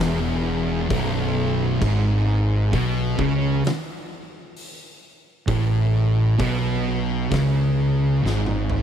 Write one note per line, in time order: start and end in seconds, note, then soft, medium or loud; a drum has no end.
0.00 0.86 E1 medium
0.00 0.89 E2 loud
0.00 snare loud
0.90 1.77 B0 loud
0.90 1.81 B1 loud
0.90 kick loud
0.90 open hi-hat medium
1.81 2.69 G#1 medium
1.81 2.72 G#2 loud
1.81 kick loud
1.81 crash loud
2.73 3.16 B1 medium
2.73 3.18 B2 loud
2.73 kick loud
2.73 open hi-hat medium
3.19 3.61 C#2 loud
3.19 3.64 C#3 loud
3.19 kick loud
3.64 snare loud
3.64 open hi-hat medium
4.57 open hi-hat medium
5.48 6.36 A1 loud
5.48 6.39 A2 loud
5.48 kick loud
5.48 open hi-hat medium
6.39 7.27 B1 loud
6.39 7.32 B2 loud
6.39 kick loud
6.39 open hi-hat medium
7.31 8.19 C#2 medium
7.31 8.22 C#3 loud
7.31 kick loud
7.31 snare loud
7.31 open hi-hat medium
8.24 8.82 G#1 loud
8.24 8.82 G#2 loud
8.24 snare medium
8.46 high tom medium
8.70 mid tom medium